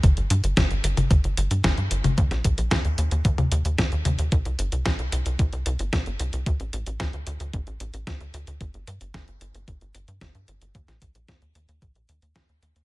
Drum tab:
HH |xxxxxxxxxxxxxxxx|xxxxxxxxxxxxxxxx|xxxxxxxxxxxxxxxx|xxxxxxxxxxxxxxxx|
SD |----o-------o---|-o--o-------o---|----o-------o---|----o-------o---|
T1 |-------o-------o|---------o----o-|----------------|----------------|
BD |o---o---o---o---|o-o-o---o---o---|o---o---o---o---|o---o---o---o---|

HH |xxxxxxxxxxxxxxxx|xxxxxxxxxxxxxxxx|
SD |----o-------o---|-o--o-------o---|
T1 |----------------|----------------|
BD |o---o---o---o---|o-o-o---o---o---|